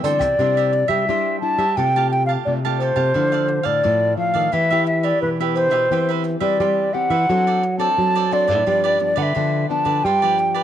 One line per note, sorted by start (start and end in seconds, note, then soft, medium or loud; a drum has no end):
0.00 0.20 D3 medium
0.00 0.37 E3 medium
0.00 0.20 A4 medium
0.00 0.90 D5 medium
0.04 0.25 G3 medium
0.04 0.25 C4 medium
0.04 0.26 E4 medium
0.04 0.20 C5 medium
0.04 0.20 E5 medium
0.04 0.18 G5 medium
0.04 closed hi-hat medium
0.19 0.36 C3 medium
0.19 0.38 C5 soft
0.19 0.37 E5 soft
0.19 0.37 G5 medium
0.19 kick medium
0.19 cross-stick medium
0.19 closed hi-hat soft
0.39 0.83 C3 medium
0.39 1.05 C3 soft
0.39 1.03 G3 medium
0.39 0.55 D4 medium
0.39 1.04 D4 medium
0.39 1.04 E4 medium
0.39 0.56 G4 medium
0.39 0.56 C5 medium
0.39 0.56 E5 medium
0.57 0.72 G4 medium
0.57 0.72 C5 medium
0.57 0.72 E5 medium
0.73 muted cavaquinho stroke soft
0.88 1.05 G3 medium
0.88 1.07 G4 medium
0.88 1.06 C5 medium
0.88 1.06 E5 medium
0.88 1.40 E5 medium
1.09 1.38 G3 medium
1.09 1.41 G3 medium
1.09 1.59 D4 soft
1.09 1.38 D4 medium
1.09 1.38 E4 medium
1.09 1.59 G4 soft
1.09 1.58 C5 medium
1.09 1.57 E5 medium
1.41 1.65 G3 medium
1.41 1.65 D4 medium
1.41 1.65 E4 medium
1.41 1.78 A5 medium
1.58 1.74 G3 medium
1.58 1.76 G4 soft
1.58 1.76 C5 medium
1.58 1.75 E5 medium
1.77 2.36 C3 medium
1.77 2.43 C3 medium
1.77 1.88 A3 medium
1.77 1.88 F4 medium
1.77 1.94 G4 soft
1.77 1.88 G4 medium
1.77 1.93 A4 medium
1.77 1.94 F5 soft
1.77 2.10 G5 loud
1.77 1.94 A5 medium
1.96 2.42 A3 medium
1.96 2.42 F4 medium
1.96 2.42 G4 medium
1.96 2.11 G4 medium
1.96 2.11 F5 medium
1.96 2.11 A5 medium
2.11 2.26 G5 loud
2.11 muted cavaquinho stroke soft
2.26 2.32 F5 medium
2.26 2.62 F5 medium
2.26 2.62 A5 medium
2.31 2.63 G4 soft
2.45 2.90 C3 medium
2.45 3.12 C3 medium
2.45 2.59 A3 medium
2.45 2.59 F4 medium
2.45 2.59 G4 medium
2.45 2.53 D5 medium
2.65 3.11 A3 medium
2.65 3.11 F4 medium
2.65 2.80 G4 medium
2.65 3.11 G4 medium
2.65 2.80 F5 medium
2.65 2.80 A5 medium
2.79 2.96 G4 medium
2.79 2.96 A4 soft
2.79 3.67 C5 medium
2.79 2.95 F5 soft
2.79 2.95 A5 medium
2.96 3.12 C3 medium
2.96 3.13 G4 medium
2.96 3.13 F5 medium
2.96 3.13 A5 medium
3.14 3.59 D3 medium
3.14 3.81 D3 medium
3.14 3.60 F3 medium
3.14 3.60 A3 medium
3.14 3.31 E4 soft
3.14 3.61 E4 medium
3.14 3.31 A4 medium
3.14 3.31 D5 medium
3.14 3.31 F5 medium
3.32 3.47 A4 medium
3.32 3.48 D5 medium
3.32 3.47 F5 medium
3.48 muted cavaquinho stroke soft
3.63 3.81 A2 medium
3.63 3.82 A4 medium
3.63 3.82 D5 medium
3.63 4.17 D5 loud
3.63 3.81 F5 medium
3.83 4.50 A2 medium
3.83 4.14 A2 medium
3.83 4.13 F3 medium
3.83 4.13 A3 medium
3.83 4.14 E4 medium
3.83 4.34 A4 soft
3.83 4.33 D5 medium
3.83 4.32 F5 medium
4.17 4.50 F3 medium
4.17 4.50 A3 medium
4.17 4.54 F5 loud
4.34 4.50 D#3 medium
4.34 4.52 A4 medium
4.34 4.51 D5 medium
4.34 4.51 F5 medium
4.52 5.18 E3 medium
4.52 5.12 E3 medium
4.52 4.65 B3 medium
4.52 4.68 E4 soft
4.52 4.65 E4 medium
4.52 4.69 G4 medium
4.52 4.65 G4 medium
4.52 4.69 B4 medium
4.52 4.86 E5 loud
4.52 4.69 E5 medium
4.70 5.34 B3 medium
4.70 5.34 E4 medium
4.70 5.35 G4 medium
4.70 4.86 G4 medium
4.70 4.86 B4 medium
4.70 4.86 E5 medium
4.86 5.01 E5 medium
4.86 muted cavaquinho stroke soft
5.01 5.38 G4 soft
5.01 5.37 B4 medium
5.01 5.21 D5 medium
5.01 5.06 E5 medium
5.01 5.37 E5 medium
5.22 5.88 B2 medium
5.22 5.72 E3 medium
5.22 5.30 B4 medium
5.40 5.86 B3 medium
5.40 5.86 E4 medium
5.40 5.86 G4 medium
5.40 5.55 G4 medium
5.40 5.55 B4 medium
5.40 5.56 E5 medium
5.54 5.72 E4 soft
5.54 5.71 G4 medium
5.54 5.70 B4 soft
5.54 6.11 C5 loud
5.54 5.70 E5 medium
5.71 5.87 B2 medium
5.71 5.89 G4 medium
5.71 5.89 B4 medium
5.71 5.88 E5 medium
5.91 6.57 E3 medium
5.91 6.35 E3 medium
5.91 6.37 B3 medium
5.91 6.37 C4 medium
5.91 6.07 G4 medium
5.91 6.37 G4 medium
5.91 6.08 B4 medium
5.91 6.08 C5 soft
5.91 6.07 E5 medium
6.09 6.23 B4 medium
6.09 6.23 C5 medium
6.09 6.24 E5 medium
6.24 muted cavaquinho stroke soft
6.40 6.57 G3 medium
6.40 6.88 B3 medium
6.40 6.88 C4 medium
6.40 6.88 G4 medium
6.40 6.58 B4 medium
6.40 6.58 C5 medium
6.40 6.95 D5 medium
6.40 6.57 E5 medium
6.60 7.25 E3 medium
6.60 6.89 G3 medium
6.60 7.10 G4 medium
6.60 7.10 B4 medium
6.60 7.10 C5 soft
6.60 7.09 E5 medium
6.93 7.14 B3 medium
6.93 7.14 C4 medium
6.93 7.15 G4 medium
6.93 7.79 F#5 loud
7.10 7.25 E3 medium
7.10 7.27 B4 medium
7.10 7.27 C5 soft
7.10 7.27 E5 medium
7.29 7.94 F#3 medium
7.29 7.88 F#3 loud
7.29 7.61 C4 medium
7.29 7.62 D4 medium
7.29 7.45 F#4 soft
7.29 7.45 A4 medium
7.29 7.62 A4 medium
7.29 7.46 C5 medium
7.29 7.46 D5 medium
7.47 7.62 A4 medium
7.47 7.62 C5 medium
7.47 7.62 D5 medium
7.63 muted cavaquinho stroke soft
7.78 8.26 C4 medium
7.78 8.26 D4 medium
7.78 8.26 A4 medium
7.78 8.14 A4 medium
7.78 8.14 C5 medium
7.78 8.13 D5 medium
7.78 8.34 A5 loud
7.98 8.50 F#3 medium
7.98 8.63 F#3 medium
8.15 8.31 A4 medium
8.15 8.31 C5 medium
8.15 8.31 D5 medium
8.31 8.61 C4 medium
8.31 8.61 D4 medium
8.31 8.48 F#4 soft
8.31 8.48 A4 soft
8.31 8.61 A4 medium
8.31 8.47 C5 medium
8.31 9.19 D5 loud
8.31 8.46 D5 medium
8.47 8.63 A2 loud
8.47 8.65 A4 medium
8.47 8.65 C5 medium
8.47 8.64 D5 medium
8.66 9.32 G2 medium
8.66 8.96 F3 medium
8.66 9.11 G3 medium
8.66 8.96 B3 medium
8.66 8.96 D4 medium
8.66 8.82 F4 soft
8.66 8.82 G4 medium
8.66 8.83 B4 soft
8.66 8.83 D5 medium
8.84 8.98 G4 medium
8.84 8.99 B4 medium
8.84 8.99 D5 medium
8.99 9.21 F3 medium
8.99 9.21 B3 medium
8.99 9.21 D4 medium
8.99 muted cavaquinho stroke soft
9.16 9.32 D3 medium
9.16 9.34 G4 medium
9.16 9.33 B4 medium
9.16 9.33 D5 medium
9.16 9.23 F#5 medium
9.22 9.69 E5 medium
9.35 10.01 D3 medium
9.35 9.65 D3 loud
9.35 9.65 F3 medium
9.35 9.65 B3 medium
9.35 9.65 D4 medium
9.35 9.85 F4 medium
9.35 9.86 G4 medium
9.35 9.85 B4 medium
9.35 9.84 D5 medium
9.70 10.02 F3 medium
9.70 10.02 B3 medium
9.70 10.02 D4 medium
9.70 10.06 A5 medium
9.85 10.01 D3 medium
9.85 10.03 G4 medium
9.85 10.02 B4 medium
9.85 10.02 D5 medium
10.04 10.63 G2 medium
10.04 10.63 G3 medium
10.04 10.21 F4 medium
10.04 10.21 G4 medium
10.04 10.21 B4 medium
10.04 10.21 D5 soft
10.04 10.63 G5 loud
10.22 10.63 F3 medium
10.22 10.63 B3 medium
10.22 10.63 D4 medium
10.22 10.38 G4 medium
10.22 10.38 B4 medium
10.22 10.38 D5 medium
10.38 muted cavaquinho stroke soft
10.54 10.63 G4 medium
10.54 10.63 B4 medium
10.54 10.63 D5 medium